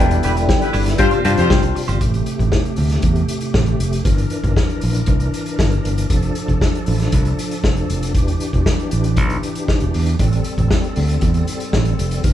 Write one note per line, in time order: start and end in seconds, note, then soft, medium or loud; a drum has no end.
0.00 0.17 E1 loud
0.00 0.95 D3 medium
0.00 0.18 G3 medium
0.00 0.78 G3 medium
0.00 1.99 G3 medium
0.00 0.78 B3 medium
0.00 0.11 D4 medium
0.00 0.78 D4 medium
0.00 0.10 E4 medium
0.00 0.79 E4 medium
0.00 0.98 E4 medium
0.00 0.10 B4 medium
0.00 0.79 B4 medium
0.00 0.71 G5 loud
0.11 muted clean electric guitar stroke medium
0.11 closed hi-hat medium
0.23 0.52 E1 medium
0.23 0.36 G3 medium
0.23 0.31 B3 medium
0.23 0.36 D4 medium
0.23 0.31 E4 medium
0.23 0.36 E4 medium
0.23 0.31 G4 medium
0.23 0.31 B4 medium
0.23 0.36 B4 medium
0.23 closed hi-hat medium
0.37 0.48 G3 medium
0.37 0.48 D4 medium
0.37 0.48 E4 medium
0.37 0.48 B4 medium
0.37 closed hi-hat soft
0.49 muted clean electric guitar stroke medium
0.49 kick loud
0.49 snare loud
0.61 0.69 B3 medium
0.61 0.69 E4 medium
0.61 0.69 G4 medium
0.61 0.69 B4 medium
0.61 muted clean electric guitar stroke soft
0.61 closed hi-hat soft
0.73 0.93 G1 loud
0.73 0.86 G3 medium
0.73 0.86 D4 medium
0.73 0.86 E4 medium
0.73 0.85 B4 medium
0.73 open hi-hat medium
0.86 0.99 G3 medium
0.86 0.99 D4 medium
0.86 0.99 E4 medium
0.86 0.98 B4 medium
0.86 snare soft
0.86 closed hi-hat medium
0.98 1.09 G2 loud
0.98 2.00 C3 medium
0.98 1.19 G3 loud
0.98 1.07 C4 loud
0.98 1.19 C4 medium
0.98 1.20 D4 medium
0.98 1.07 F4 medium
0.98 1.20 F4 medium
0.98 2.00 F4 medium
0.98 1.07 G4 loud
0.98 1.07 C5 loud
0.98 1.20 C5 loud
0.98 muted clean electric guitar stroke soft
0.98 kick loud
0.98 closed hi-hat medium
1.11 1.23 C4 medium
1.11 1.24 F4 medium
1.11 1.24 G4 medium
1.11 1.24 C5 medium
1.11 closed hi-hat soft
1.24 1.34 G2 loud
1.24 1.86 G3 medium
1.24 1.40 C4 medium
1.24 1.86 C4 medium
1.24 1.86 D4 medium
1.24 1.37 F4 medium
1.24 1.86 F4 medium
1.24 1.37 G4 loud
1.24 1.36 C5 medium
1.24 1.86 C5 medium
1.24 closed hi-hat medium
1.37 1.47 F2 medium
1.37 1.73 C4 loud
1.37 1.74 F4 loud
1.37 1.73 G4 loud
1.37 1.73 C5 loud
1.37 muted clean electric guitar stroke soft
1.37 closed hi-hat soft
1.50 1.60 G2 loud
1.50 1.66 C4 medium
1.50 1.63 F4 medium
1.50 1.62 G4 loud
1.50 1.62 C5 medium
1.50 kick loud
1.50 snare loud
1.62 1.73 C2 medium
1.62 muted clean electric guitar stroke soft
1.62 closed hi-hat soft
1.75 muted clean electric guitar stroke soft
1.75 open hi-hat medium
1.88 1.98 G1 loud
1.88 2.01 C4 medium
1.88 2.01 F4 medium
1.88 2.01 G4 medium
1.88 2.00 C5 medium
1.88 closed hi-hat medium
2.01 2.21 A1 medium
2.01 4.03 C3 medium
2.01 4.04 A3 medium
2.01 4.03 G4 medium
2.01 kick loud
2.01 closed hi-hat medium
2.14 closed hi-hat soft
2.26 closed hi-hat medium
2.39 2.49 A1 medium
2.39 kick medium
2.39 closed hi-hat soft
2.52 kick loud
2.52 snare loud
2.65 closed hi-hat soft
2.76 2.97 D2 medium
2.76 open hi-hat medium
2.89 snare soft
2.89 closed hi-hat soft
3.02 3.22 E2 medium
3.02 kick loud
3.02 closed hi-hat medium
3.16 closed hi-hat soft
3.28 closed hi-hat medium
3.41 closed hi-hat soft
3.54 3.74 A1 medium
3.54 kick loud
3.54 snare loud
3.66 closed hi-hat soft
3.80 3.99 F1 medium
3.80 closed hi-hat medium
3.93 closed hi-hat soft
4.04 4.25 G1 medium
4.04 6.07 E3 medium
4.04 10.15 D4 medium
4.04 6.07 A#4 medium
4.04 kick loud
4.04 closed hi-hat medium
4.18 closed hi-hat soft
4.30 closed hi-hat medium
4.44 4.53 G1 medium
4.44 kick medium
4.44 closed hi-hat soft
4.56 kick loud
4.56 snare loud
4.70 closed hi-hat soft
4.81 5.02 A#1 medium
4.81 open hi-hat medium
4.94 closed hi-hat soft
5.06 5.27 C2 medium
5.06 kick loud
5.06 closed hi-hat medium
5.20 closed hi-hat soft
5.34 closed hi-hat medium
5.46 closed hi-hat soft
5.59 5.78 G1 medium
5.59 kick loud
5.59 snare loud
5.71 closed hi-hat soft
5.85 6.04 G1 medium
5.85 closed hi-hat medium
5.98 closed hi-hat medium
6.10 6.29 F1 medium
6.10 8.13 F3 medium
6.10 8.13 A4 medium
6.10 kick loud
6.10 closed hi-hat medium
6.22 closed hi-hat soft
6.35 closed hi-hat medium
6.48 6.58 F1 medium
6.48 kick medium
6.48 closed hi-hat soft
6.61 kick loud
6.61 snare loud
6.75 closed hi-hat soft
6.86 7.07 A1 loud
6.86 open hi-hat medium
7.00 snare soft
7.00 closed hi-hat soft
7.12 7.32 C2 medium
7.12 kick loud
7.12 closed hi-hat medium
7.25 closed hi-hat soft
7.39 closed hi-hat medium
7.51 closed hi-hat soft
7.64 7.83 F1 medium
7.64 kick loud
7.64 snare loud
7.76 closed hi-hat soft
7.90 8.15 F1 medium
7.90 closed hi-hat medium
8.03 closed hi-hat medium
8.15 8.34 E1 loud
8.15 10.18 E3 medium
8.15 10.18 G4 medium
8.15 kick loud
8.15 closed hi-hat medium
8.28 closed hi-hat soft
8.40 closed hi-hat medium
8.53 8.63 E1 medium
8.53 kick medium
8.53 closed hi-hat soft
8.66 kick medium
8.66 snare loud
8.80 closed hi-hat soft
8.91 9.17 A1 medium
8.91 closed hi-hat medium
9.04 closed hi-hat soft
9.17 9.37 B1 medium
9.17 kick loud
9.17 closed hi-hat medium
9.30 closed hi-hat soft
9.43 closed hi-hat medium
9.55 closed hi-hat soft
9.68 kick loud
9.68 snare medium
9.80 9.91 E1 medium
9.80 closed hi-hat soft
9.94 10.14 E2 medium
9.94 open hi-hat medium
10.06 closed hi-hat medium
10.19 10.39 A1 loud
10.19 12.23 G3 medium
10.19 12.23 C4 medium
10.19 12.23 A4 medium
10.19 kick loud
10.19 closed hi-hat medium
10.32 closed hi-hat soft
10.44 closed hi-hat medium
10.58 10.68 A1 medium
10.58 kick medium
10.58 closed hi-hat soft
10.71 kick loud
10.71 snare loud
10.84 closed hi-hat soft
10.96 11.16 D2 medium
10.96 open hi-hat medium
11.09 closed hi-hat medium
11.21 11.42 E2 medium
11.21 kick loud
11.21 closed hi-hat medium
11.34 closed hi-hat soft
11.47 closed hi-hat medium
11.60 closed hi-hat soft
11.73 11.93 A1 medium
11.73 kick loud
11.73 snare loud
11.85 closed hi-hat soft
11.99 12.18 F1 medium
11.99 closed hi-hat medium
12.11 closed hi-hat soft
12.24 12.33 G1 medium
12.24 12.33 E3 medium
12.24 12.33 D4 medium
12.24 12.33 A#4 medium
12.24 kick loud
12.24 closed hi-hat medium